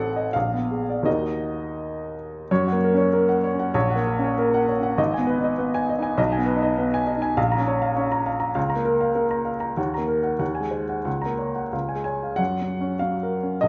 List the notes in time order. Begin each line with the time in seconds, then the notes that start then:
Already playing: A1 C4 F#5
0.00 A4
0.16 D#5
0.33 A#1 F5
0.54 B3
0.71 G#4
0.90 D5
1.03 D#2 A#3 D#4 F#4 D#5
2.51 F#2 C#5
2.68 F#5
2.72 A#3
2.84 A#4
2.94 C#4 C#5
3.13 A#3 A#4
3.29 F#5
3.44 C#5
3.53 C#4
3.59 F#5
3.74 A#1 C#5
3.90 F#5
3.96 A#3
4.07 A#4
4.19 C#4
4.24 C#5
4.38 A#3 A#4
4.54 F#5
4.69 C#5
4.79 C#4 F#5
4.98 G#1 D#5
5.14 G#5
5.18 B3
5.27 B4
5.38 D#4
5.44 D#5
5.58 B3 B4
5.74 G#5
5.89 D#5
5.99 D#4 G#5
6.17 B1 D#5
6.32 G#5
6.37 B3
6.46 B4
6.56 D#4
6.62 D#5
6.78 B3 B4
6.94 G#5
7.07 D#5
7.17 D#4
7.22 G#5
7.37 A#1 F5
7.52 A#5
7.58 C#4
7.68 C#5
7.82 F5
7.96 C#4 C#5
8.12 A#5
8.26 F5
8.40 A#5
8.55 C#2 F5
8.70 A#5
8.76 A#3
8.85 A#4
9.01 F5
9.15 A#3 A#4
9.31 A#5
9.45 F5
9.60 A#5
9.77 D#2 F#5
9.94 A#3 A#5
10.08 A#4
10.23 F#5
10.39 D#2 F#5
10.55 G#5
10.60 G#3
10.71 C5
10.89 F#5
11.05 C#2 F#5
11.22 A#5
11.26 A#3
11.38 C#5
11.56 F#5
11.73 C#2 F5
11.89 G#5
11.95 G#3
12.04 C#5 G#5
12.23 F5
12.36 F#2 F#5
12.62 F#3
12.81 C#4
12.99 F#3 F5
13.23 A#4
13.43 C#4
13.61 A#1 D#5